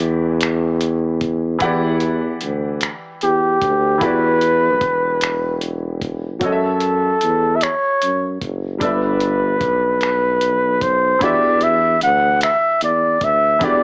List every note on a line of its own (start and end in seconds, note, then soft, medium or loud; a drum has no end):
0.00 1.57 E2 loud
0.00 1.56 E3 medium
0.00 1.57 E4 medium
0.00 1.58 F#4 medium
0.00 1.58 G4 medium
0.00 1.59 D5 medium
0.00 closed hi-hat soft
0.41 finger snap medium
0.41 closed hi-hat medium
0.81 closed hi-hat medium
1.21 kick medium
1.21 closed hi-hat soft
1.59 2.37 E2 loud
1.59 3.96 E3 medium
1.59 3.97 E4 medium
1.59 3.98 F#5 medium
1.59 kick medium
1.59 closed hi-hat medium
1.63 3.98 G4 medium
1.63 3.99 D5 medium
2.00 closed hi-hat soft
2.41 2.91 D2 medium
2.41 closed hi-hat soft
2.81 finger snap medium
2.81 closed hi-hat medium
3.21 3.58 E2 medium
3.21 4.04 G4 medium
3.21 closed hi-hat soft
3.61 4.03 D2 medium
3.61 kick medium
3.61 closed hi-hat soft
3.98 4.83 E2 loud
3.98 6.36 E3 medium
3.98 6.37 E4 soft
3.98 6.37 F#4 medium
3.98 kick loud
3.98 closed hi-hat medium
4.03 6.38 G4 soft
4.03 5.62 B4 loud
4.03 6.39 D5 medium
4.41 closed hi-hat soft
4.81 6.43 E1 medium
4.81 kick medium
4.81 closed hi-hat soft
5.21 finger snap medium
5.21 closed hi-hat medium
5.61 closed hi-hat soft
6.02 kick medium
6.02 closed hi-hat soft
6.39 7.17 F#2 medium
6.39 8.76 F#3 medium
6.39 8.77 F#4 soft
6.39 8.78 A4 soft
6.39 kick medium
6.39 closed hi-hat medium
6.44 7.57 A4 medium
6.44 8.79 C#5 soft
6.44 6.50 D#5 soft
6.52 8.83 E5 medium
6.80 closed hi-hat soft
7.21 7.71 E2 medium
7.21 closed hi-hat soft
7.56 7.65 E5 medium
7.61 8.42 C#5 medium
7.61 finger snap medium
7.61 closed hi-hat medium
8.02 8.38 F#2 medium
8.02 closed hi-hat medium
8.41 8.78 F#1 medium
8.41 kick medium
8.41 closed hi-hat soft
8.79 9.63 G1 medium
8.79 11.16 G3 soft
8.79 11.17 D4 medium
8.79 11.17 A4 soft
8.79 10.84 B4 medium
8.79 kick medium
8.79 closed hi-hat medium
8.83 11.18 D5 medium
8.83 11.19 E5 medium
9.21 closed hi-hat soft
9.61 11.23 B1 medium
9.61 kick medium
9.61 closed hi-hat soft
10.01 finger snap medium
10.01 closed hi-hat medium
10.41 closed hi-hat medium
10.81 11.24 C5 medium
10.81 kick medium
10.81 closed hi-hat soft
11.19 11.97 E2 medium
11.19 13.56 E3 medium
11.19 13.57 D4 soft
11.19 13.57 F#4 soft
11.19 kick loud
11.19 closed hi-hat medium
11.23 13.58 G4 soft
11.23 11.65 D5 medium
11.23 13.59 E5 medium
11.60 12.02 E5 medium
11.60 closed hi-hat soft
12.01 12.51 D2 medium
12.01 12.39 F#5 medium
12.01 closed hi-hat soft
12.41 12.79 E5 medium
12.41 finger snap medium
12.41 closed hi-hat medium
12.81 13.17 E2 medium
12.81 13.26 D5 medium
12.81 closed hi-hat medium
13.21 13.63 D2 medium
13.21 13.65 E5 medium
13.21 kick medium
13.21 closed hi-hat soft
13.59 13.83 E2 loud
13.59 13.83 E3 medium
13.59 13.83 D4 soft
13.59 13.83 F#4 soft
13.59 kick medium
13.59 closed hi-hat medium
13.64 13.83 G4 medium
13.64 13.83 D5 medium